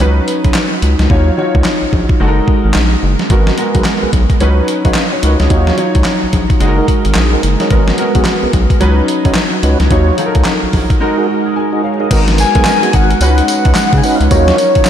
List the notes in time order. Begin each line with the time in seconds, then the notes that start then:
0.00 C#2 F#3 C#4 D#4 B4, closed hi-hat
0.28 closed hi-hat
0.44 B1, kick, closed hi-hat
0.54 snare, clap, closed hi-hat
0.82 C#2, closed hi-hat
0.99 C#2, snare, closed hi-hat
1.10 D#2 F#3 D#4 F4 C#5, kick
1.37 F#3 D#4 F4 C#5
1.55 C#2, kick
1.64 snare, clap
1.82 A#1
1.93 A#1, kick
2.09 kick
2.20 F#1 G#3 D#4 F#4 A4
2.28 A#4
2.48 kick
2.65 G#1
2.74 A#1, snare, clap
3.03 F#1
3.19 snare
3.30 G#1 G#3 B3 F#4 A#4, kick, closed hi-hat
3.47 snare
3.58 G#3 B3 F#4 A#4, closed hi-hat
3.75 B1 F#4 G#4 A#4 B4, kick, closed hi-hat
3.84 snare, clap, closed hi-hat
4.02 B1 F#4 G#4 A#4 B4
4.13 B1, kick, closed hi-hat
4.30 kick, closed hi-hat
4.40 C#2 F#3 C#4 D#4 B4, closed hi-hat
4.68 closed hi-hat
4.85 B1 D#4 F#4 B4 C#5 F5, kick, closed hi-hat
4.94 D#5, snare, clap, closed hi-hat
5.13 C#5
5.23 C#2 D#4 F#4 A#4 B4 C#5, closed hi-hat
5.40 C#2 G#4, snare, closed hi-hat
5.50 D#2 F#3 D#4 F4 F#4 C#5, kick, closed hi-hat
5.67 snare
5.78 F#3 D#4 F4 C#5, closed hi-hat
5.95 C#2, kick, closed hi-hat
6.04 snare, clap, closed hi-hat
6.23 A#1
6.33 A#1, kick, closed hi-hat
6.50 kick, closed hi-hat
6.60 F#1 G#3 D#4 F#4 G#4, closed hi-hat
6.68 A#4
6.78 D#4 F#4 G#4 A#4
6.88 kick, closed hi-hat
7.05 G#1, closed hi-hat
7.15 A#1 G#4, snare, clap, closed hi-hat
7.33 D#4 F#4 G#4 A#4
7.43 F#1, closed hi-hat
7.60 D#4 F#4 G#4 A#4 C#5, snare, closed hi-hat
7.70 G#1 G#3 B3 F#4 A#4, kick, closed hi-hat
7.88 snare
7.98 G#3 B3 F#4 A#4, closed hi-hat
8.15 B1 B3 F#4 G#4 A#4, kick, closed hi-hat
8.25 snare, clap, closed hi-hat
8.42 B1 B3 F#4 G#4 A#4
8.53 B1, kick, closed hi-hat
8.70 kick, closed hi-hat
8.80 C#2 F#3 C#4 D#4 B4, closed hi-hat
9.08 closed hi-hat
9.25 B1 C#4 D#4 F#4 B4, kick, closed hi-hat
9.35 snare, clap, closed hi-hat
9.63 C#2 C#4 D#4 F#4 B4, closed hi-hat
9.80 C#2, snare, closed hi-hat
9.90 D#2 F#3 D#4 F4 F#4 C#5, kick, closed hi-hat
10.18 F#3 D#4 F4 A4, closed hi-hat
10.26 A#4
10.35 C#2, kick, closed hi-hat
10.45 snare, clap, closed hi-hat
10.63 A#1
10.73 A#1, kick, open hi-hat
10.90 kick, closed hi-hat
11.00 G#3 D#4 F#4 A#4
11.17 D#4 F#4 G#4 A#4
11.29 F#4
11.46 G#4
11.56 A#4 G#5
11.72 D#4 F#4 G#4 A#4
11.84 C#5 F5
12.00 D#4 F#4 G#4 A#4 D#5
12.11 G#1 G#3 B3 D#4 F#4 A#4, kick, closed hi-hat, crash, tambourine
12.28 snare, closed hi-hat
12.38 G#5, closed hi-hat, tambourine
12.55 B1 B3 F#4 G#4 A#4, kick, closed hi-hat
12.65 G#3 B3 D#4 F#4 A#4, snare, clap, closed hi-hat, tambourine
12.83 B3 F#4 G#4 A#4, closed hi-hat
12.93 G#1 F#5, kick, closed hi-hat
13.11 closed hi-hat
13.21 C#2 G#3 C#4 D#4 F#4 B4 F#5, closed hi-hat, tambourine
13.38 closed hi-hat
13.48 closed hi-hat, tambourine
13.65 C#2 C#4 D#4 F#4 B4, kick, closed hi-hat
13.75 snare, clap, closed hi-hat, tambourine
13.93 C#3, kick, closed hi-hat
13.97 G#5
14.03 G#3 C#4 D#4 F#4 B4 F#5, open hi-hat, tambourine
14.15 F5
14.20 C#2 F#5, closed hi-hat
14.31 D#2 F#3 C#4 D#4 F4 F#4 A#4 C#5, kick, closed hi-hat, tambourine
14.48 snare, closed hi-hat
14.58 closed hi-hat, tambourine
14.75 A#1, kick, closed hi-hat
14.85 F#3, snare, clap, closed hi-hat, tambourine